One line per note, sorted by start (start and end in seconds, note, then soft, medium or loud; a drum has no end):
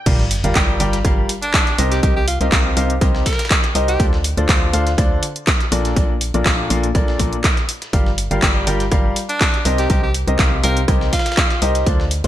0.06 0.41 G1 loud
0.06 0.22 G3 medium
0.06 0.22 F4 medium
0.06 0.22 G4 medium
0.06 0.22 A#4 medium
0.06 0.22 D5 medium
0.06 0.22 F5 medium
0.06 kick loud
0.06 closed hi-hat medium
0.06 crash loud
0.06 sub drop medium
0.19 snare soft
0.31 closed hi-hat medium
0.31 open hi-hat loud
0.44 0.53 G1 loud
0.44 0.54 G3 medium
0.44 0.54 F4 medium
0.44 0.54 G4 medium
0.44 0.54 A#4 medium
0.44 0.54 D5 medium
0.44 0.54 F5 medium
0.44 closed hi-hat medium
0.55 0.78 G1 loud
0.55 0.77 G3 loud
0.55 0.77 F4 medium
0.55 0.77 G4 medium
0.55 0.77 A#4 medium
0.55 0.77 D5 medium
0.55 0.77 G5 loud
0.55 kick loud
0.55 snare loud
0.55 clap loud
0.55 closed hi-hat medium
0.80 1.02 G1 loud
0.80 0.95 G3 loud
0.80 0.95 F4 medium
0.80 0.95 G4 medium
0.80 0.95 A#4 medium
0.80 0.95 D5 medium
0.80 0.95 G5 loud
0.80 closed hi-hat medium
0.80 open hi-hat loud
0.93 snare medium
0.93 closed hi-hat medium
1.05 1.26 G1 loud
1.05 1.28 G3 loud
1.05 1.28 F4 medium
1.05 1.28 G4 medium
1.05 1.28 A#4 medium
1.05 1.28 D5 medium
1.05 1.28 F5 loud
1.05 kick loud
1.05 cross-stick medium
1.05 closed hi-hat medium
1.29 closed hi-hat medium
1.29 open hi-hat loud
1.42 1.84 D4 medium
1.42 closed hi-hat medium
1.54 kick loud
1.54 snare loud
1.54 clap loud
1.54 closed hi-hat medium
1.67 snare soft
1.67 closed hi-hat soft
1.78 2.01 C2 medium
1.78 2.00 C3 loud
1.78 2.00 D#4 medium
1.78 2.00 G4 medium
1.78 2.00 A#4 medium
1.78 2.00 C5 medium
1.78 2.00 D#5 loud
1.78 closed hi-hat medium
1.78 open hi-hat loud
1.91 1.99 G4 medium
1.91 snare medium
1.91 closed hi-hat medium
2.03 2.38 C2 loud
2.03 2.18 C3 medium
2.03 2.18 D#4 medium
2.03 2.11 G4 medium
2.03 2.18 G4 medium
2.03 2.18 A#4 medium
2.03 2.18 C5 medium
2.03 2.18 D#5 medium
2.03 kick loud
2.03 closed hi-hat medium
2.16 2.25 G4 medium
2.28 2.36 F4 medium
2.28 closed hi-hat medium
2.28 open hi-hat loud
2.41 2.50 C2 medium
2.41 2.51 C3 medium
2.41 2.51 D#4 medium
2.41 2.48 F4 medium
2.41 2.51 G4 medium
2.41 2.51 A#4 medium
2.41 2.51 C5 medium
2.41 2.51 D#5 medium
2.41 closed hi-hat medium
2.52 2.74 C2 loud
2.52 2.74 C3 loud
2.52 2.74 D#4 medium
2.52 2.74 G4 medium
2.52 2.74 A#4 medium
2.52 2.74 C5 medium
2.52 2.74 F5 loud
2.52 kick loud
2.52 snare loud
2.52 clap loud
2.52 closed hi-hat medium
2.77 2.99 C2 loud
2.77 2.92 C3 loud
2.77 2.92 D#4 medium
2.77 2.92 G4 medium
2.77 2.92 A#4 medium
2.77 2.92 C5 medium
2.77 2.92 F5 loud
2.77 closed hi-hat medium
2.77 open hi-hat loud
2.90 closed hi-hat medium
3.01 3.22 C2 loud
3.01 3.25 C3 loud
3.01 3.25 D#4 medium
3.01 3.25 G4 medium
3.01 3.25 A#4 medium
3.01 3.25 C5 medium
3.01 3.25 D#5 loud
3.01 kick loud
3.01 cross-stick medium
3.01 closed hi-hat medium
3.15 snare medium
3.26 3.47 A#4 medium
3.26 kick medium
3.26 snare medium
3.26 closed hi-hat medium
3.26 open hi-hat loud
3.33 snare medium
3.33 closed hi-hat medium
3.39 snare medium
3.39 closed hi-hat medium
3.45 snare medium
3.45 closed hi-hat medium
3.50 kick loud
3.50 snare loud
3.50 clap loud
3.50 closed hi-hat medium
3.64 snare medium
3.64 closed hi-hat soft
3.75 3.97 C2 medium
3.75 3.96 D#4 loud
3.75 3.96 G4 medium
3.75 3.96 A#4 medium
3.75 3.96 C5 medium
3.75 3.96 D#5 loud
3.75 closed hi-hat medium
3.75 open hi-hat loud
3.88 4.05 G4 medium
3.88 snare soft
3.88 closed hi-hat medium
4.00 4.35 D2 medium
4.00 4.15 D3 medium
4.00 4.15 D4 medium
4.00 4.15 F4 medium
4.00 4.15 A4 medium
4.00 4.15 C5 medium
4.00 4.15 D5 loud
4.00 kick loud
4.00 closed hi-hat medium
4.13 snare soft
4.24 closed hi-hat medium
4.24 open hi-hat loud
4.37 4.47 D2 loud
4.37 4.47 D3 medium
4.37 4.47 D4 medium
4.37 4.47 F4 medium
4.37 4.47 A4 medium
4.37 4.47 C5 medium
4.37 4.47 D5 medium
4.37 closed hi-hat medium
4.49 4.71 D2 medium
4.49 4.71 D3 loud
4.49 4.71 D4 medium
4.49 4.71 F4 medium
4.49 4.71 A4 medium
4.49 4.71 C5 medium
4.49 4.71 F5 loud
4.49 kick loud
4.49 snare loud
4.49 clap loud
4.49 closed hi-hat medium
4.73 4.96 D2 loud
4.73 4.89 D3 loud
4.73 4.89 D4 medium
4.73 4.89 F4 medium
4.73 4.89 A4 medium
4.73 4.89 C5 medium
4.73 4.89 F5 loud
4.73 closed hi-hat medium
4.73 open hi-hat loud
4.87 snare soft
4.87 closed hi-hat medium
4.98 5.19 D2 loud
4.98 5.21 D3 medium
4.98 5.21 D4 medium
4.98 5.21 F4 medium
4.98 5.21 A4 medium
4.98 5.21 C5 medium
4.98 5.21 D5 loud
4.98 kick loud
4.98 cross-stick medium
4.98 closed hi-hat medium
5.23 closed hi-hat medium
5.23 open hi-hat loud
5.36 closed hi-hat medium
5.47 kick loud
5.47 snare loud
5.47 clap loud
5.47 closed hi-hat medium
5.60 snare soft
5.60 closed hi-hat soft
5.72 5.94 A#1 medium
5.72 5.93 A#2 medium
5.72 5.93 D4 medium
5.72 5.93 F4 medium
5.72 5.93 A4 medium
5.72 5.93 A#4 medium
5.72 5.93 D5 loud
5.72 closed hi-hat medium
5.72 open hi-hat loud
5.85 snare medium
5.85 closed hi-hat medium
5.96 6.32 A#1 medium
5.96 6.12 A#2 medium
5.96 6.12 D4 medium
5.96 6.12 F4 medium
5.96 6.12 A4 medium
5.96 6.12 A#4 medium
5.96 6.12 D5 loud
5.96 kick loud
5.96 closed hi-hat medium
6.21 closed hi-hat medium
6.21 open hi-hat loud
6.34 6.43 A#1 medium
6.34 6.44 A#2 medium
6.34 6.44 D4 medium
6.34 6.44 F4 medium
6.34 6.44 A4 medium
6.34 6.44 A#4 medium
6.34 6.44 D5 medium
6.34 closed hi-hat medium
6.46 6.68 A#1 loud
6.46 6.68 A#2 loud
6.46 6.68 D4 medium
6.46 6.68 F4 medium
6.46 6.68 A4 medium
6.46 6.68 A#4 medium
6.46 6.68 F5 loud
6.46 kick loud
6.46 snare loud
6.46 clap loud
6.46 closed hi-hat medium
6.70 6.93 A#1 loud
6.70 6.86 A#2 loud
6.70 6.86 D4 medium
6.70 6.86 F4 medium
6.70 6.86 A4 medium
6.70 6.86 A#4 medium
6.70 6.86 F5 loud
6.70 closed hi-hat medium
6.70 open hi-hat loud
6.83 closed hi-hat soft
6.95 7.17 A#1 loud
6.95 7.17 A#2 medium
6.95 7.17 D4 medium
6.95 7.17 F4 medium
6.95 7.17 A4 medium
6.95 7.17 A#4 medium
6.95 7.17 D5 loud
6.95 kick loud
6.95 cross-stick medium
6.95 closed hi-hat medium
7.08 snare medium
7.19 7.32 A#1 loud
7.19 7.35 A#2 medium
7.19 7.35 D4 medium
7.19 7.35 F4 medium
7.19 7.35 A4 medium
7.19 7.35 A#4 medium
7.19 7.35 D5 loud
7.19 kick medium
7.19 closed hi-hat medium
7.19 open hi-hat loud
7.33 closed hi-hat medium
7.44 kick loud
7.44 snare loud
7.44 clap loud
7.44 closed hi-hat medium
7.57 snare medium
7.57 closed hi-hat soft
7.69 closed hi-hat medium
7.69 open hi-hat loud
7.82 snare soft
7.82 closed hi-hat medium
7.93 8.28 G1 medium
7.93 8.08 G3 medium
7.93 8.08 F4 medium
7.93 8.08 G4 medium
7.93 8.08 A#4 medium
7.93 8.08 D5 medium
7.93 8.08 F5 loud
7.93 kick loud
7.93 closed hi-hat medium
8.06 snare soft
8.18 closed hi-hat medium
8.18 open hi-hat loud
8.31 8.40 G1 medium
8.31 8.41 G3 medium
8.31 8.41 F4 medium
8.31 8.41 G4 medium
8.31 8.41 A#4 medium
8.31 8.41 D5 medium
8.31 8.41 F5 medium
8.31 closed hi-hat medium
8.42 8.65 G1 loud
8.42 8.64 G3 medium
8.42 8.64 F4 medium
8.42 8.64 G4 medium
8.42 8.64 A#4 medium
8.42 8.64 D5 medium
8.42 8.64 G5 loud
8.42 kick loud
8.42 snare loud
8.42 clap loud
8.42 closed hi-hat medium
8.67 8.89 G1 loud
8.67 8.82 G3 loud
8.67 8.82 F4 medium
8.67 8.82 G4 medium
8.67 8.82 A#4 medium
8.67 8.82 D5 medium
8.67 8.82 G5 loud
8.67 closed hi-hat medium
8.67 open hi-hat loud
8.80 snare soft
8.80 closed hi-hat medium
8.91 9.13 G1 loud
8.91 9.15 G3 loud
8.91 9.15 F4 medium
8.91 9.15 G4 medium
8.91 9.15 A#4 medium
8.91 9.15 D5 medium
8.91 9.15 F5 loud
8.91 kick loud
8.91 cross-stick medium
8.91 closed hi-hat medium
9.16 closed hi-hat medium
9.16 open hi-hat loud
9.29 9.71 D4 loud
9.29 closed hi-hat medium
9.41 kick loud
9.41 snare loud
9.41 clap loud
9.41 closed hi-hat medium
9.54 snare soft
9.54 closed hi-hat soft
9.65 9.88 C2 medium
9.65 9.87 C3 medium
9.65 9.87 D#4 medium
9.65 9.86 G4 medium
9.65 9.86 A#4 medium
9.65 9.86 C5 medium
9.65 9.87 D#5 loud
9.65 closed hi-hat medium
9.65 open hi-hat loud
9.78 9.86 G4 medium
9.78 snare soft
9.78 closed hi-hat medium
9.90 10.25 C2 medium
9.90 10.05 C3 medium
9.90 10.05 D#4 medium
9.90 10.05 G4 medium
9.90 9.98 G4 medium
9.90 10.05 A#4 medium
9.90 10.05 C5 medium
9.90 10.05 D#5 medium
9.90 kick loud
9.90 closed hi-hat medium
10.03 10.12 G4 medium
10.14 closed hi-hat medium
10.14 open hi-hat loud
10.27 10.37 C2 loud
10.27 10.37 C3 medium
10.27 10.37 D#4 medium
10.27 10.37 G4 medium
10.27 10.37 A#4 medium
10.27 10.37 C5 medium
10.27 10.37 D#5 medium
10.27 closed hi-hat medium
10.39 10.61 C2 loud
10.39 10.61 C3 loud
10.39 10.61 D#4 medium
10.39 10.61 G4 medium
10.39 10.61 A#4 medium
10.39 10.61 C5 medium
10.39 10.61 F5 loud
10.39 kick loud
10.39 snare loud
10.39 clap loud
10.39 closed hi-hat medium
10.64 10.86 C2 loud
10.64 10.79 C3 loud
10.64 10.79 D#4 medium
10.64 10.79 G4 medium
10.64 10.79 A#4 medium
10.64 10.84 A#4 medium
10.64 10.79 C5 medium
10.64 10.79 F5 loud
10.64 closed hi-hat medium
10.64 open hi-hat loud
10.77 closed hi-hat medium
10.88 11.09 C2 medium
10.88 11.11 C3 loud
10.88 11.11 D#4 medium
10.88 11.11 G4 medium
10.88 11.11 A#4 medium
10.88 11.11 C5 medium
10.88 11.11 D#5 loud
10.88 kick loud
10.88 cross-stick medium
10.88 closed hi-hat medium
11.01 snare medium
11.13 11.62 F4 loud
11.13 kick medium
11.13 snare medium
11.13 closed hi-hat medium
11.13 open hi-hat loud
11.19 snare medium
11.19 closed hi-hat medium
11.26 snare medium
11.26 closed hi-hat medium
11.32 snare medium
11.32 closed hi-hat medium
11.37 kick loud
11.37 snare loud
11.37 clap loud
11.37 closed hi-hat medium
11.50 snare medium
11.50 closed hi-hat soft
11.62 11.84 C2 loud
11.62 11.83 D#4 loud
11.62 11.83 G4 medium
11.62 11.83 A#4 medium
11.62 11.83 C5 medium
11.62 11.83 D#5 loud
11.62 closed hi-hat medium
11.62 open hi-hat loud
11.75 snare soft
11.75 closed hi-hat medium
11.86 12.22 D2 medium
11.86 12.02 D3 medium
11.86 12.02 D4 medium
11.86 12.02 F4 medium
11.86 12.02 A4 medium
11.86 12.02 C5 medium
11.86 12.02 D5 loud
11.86 kick loud
11.86 closed hi-hat medium
12.00 snare soft
12.11 closed hi-hat medium
12.11 open hi-hat loud
12.24 12.27 D2 loud
12.24 12.27 D3 medium
12.24 12.27 D4 medium
12.24 12.27 F4 medium
12.24 12.27 A4 medium
12.24 12.27 D5 medium
12.24 closed hi-hat medium